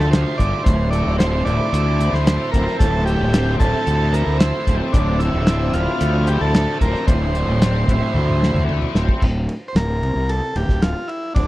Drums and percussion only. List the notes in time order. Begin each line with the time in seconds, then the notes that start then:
0.13 snare, closed hi-hat
0.39 kick, closed hi-hat
0.66 kick, closed hi-hat
0.93 closed hi-hat
1.20 snare, closed hi-hat
1.47 closed hi-hat
1.74 closed hi-hat
2.00 closed hi-hat
2.14 snare
2.27 snare, closed hi-hat
2.54 kick, closed hi-hat
2.68 snare
2.80 kick, closed hi-hat
3.07 closed hi-hat
3.34 snare, closed hi-hat
3.60 kick, closed hi-hat
3.87 closed hi-hat
4.14 closed hi-hat
4.40 snare, closed hi-hat
4.67 kick, closed hi-hat
4.94 kick, closed hi-hat
5.20 closed hi-hat
5.47 snare, closed hi-hat
5.74 closed hi-hat
6.01 closed hi-hat
6.27 closed hi-hat
6.55 snare, closed hi-hat
6.81 kick, closed hi-hat
6.95 snare
7.08 kick, closed hi-hat
7.35 closed hi-hat
7.62 snare, closed hi-hat
7.88 kick, closed hi-hat
8.16 high tom
8.29 high tom
8.43 snare
8.56 mid tom
8.69 mid tom
8.82 mid tom
8.95 snare
9.09 kick
9.22 kick, crash
9.49 ride
9.76 snare, ride
10.03 ride
10.29 ride
10.56 ride
10.69 kick, snare
10.82 snare, ride
11.09 ride
11.36 kick, ride